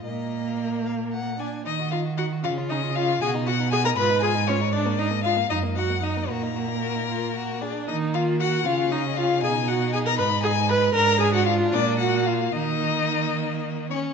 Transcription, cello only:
\new Staff \with { instrumentName = "Cello" } { \clef bass \time 6/8 \key ees \minor \tempo 4. = 77 bes,2~ bes,8 r8 | ees4. des4. | b,4. aes,4.~ | aes,4. ges,4. |
bes,2~ bes,8 r8 | ees4. des4. | b,4. aes,4. | aes,4. bes,4. |
ees2~ ees8 r8 | }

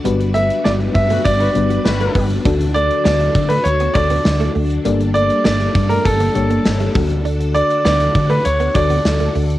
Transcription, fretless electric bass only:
\new Staff \with { instrumentName = "Fretless electric bass" } { \clef bass \time 4/4 \key d \major \tempo 4 = 100 g,,4 g,,8 g,8 g,,8 g,,8 g,,8 g,,8 | d,4 d,8 d8 d,8 d,8 d,8 d,8 | g,,4 g,,8 g,8 g,,8 g,,8 g,,8 d,8~ | d,4 d,8 d8 d,8 d,8 d,8 d,8 | }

